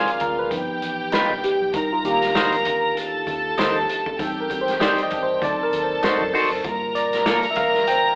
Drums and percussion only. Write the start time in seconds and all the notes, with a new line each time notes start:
0.08 closed hi-hat
0.20 kick, closed hi-hat
0.51 kick, closed hi-hat
0.82 closed hi-hat
1.12 snare, closed hi-hat
1.30 kick
1.44 closed hi-hat
1.74 kick, closed hi-hat
2.05 closed hi-hat
2.22 snare, closed hi-hat
2.35 snare, closed hi-hat
2.52 closed hi-hat
2.65 kick, closed hi-hat
2.97 closed hi-hat
3.27 kick, closed hi-hat
3.58 snare, closed hi-hat
3.89 closed hi-hat
4.06 kick
4.19 kick, closed hi-hat
4.50 kick, closed hi-hat
4.68 snare, closed hi-hat
4.81 snare, closed hi-hat
4.98 closed hi-hat
5.11 kick, closed hi-hat
5.42 kick, closed hi-hat
5.73 closed hi-hat
6.03 snare, closed hi-hat
6.21 kick
6.35 open hi-hat
6.64 kick, closed hi-hat
6.95 closed hi-hat
7.13 snare, closed hi-hat
7.26 snare, closed hi-hat
7.43 closed hi-hat
7.56 kick, closed hi-hat
7.74 snare
7.87 closed hi-hat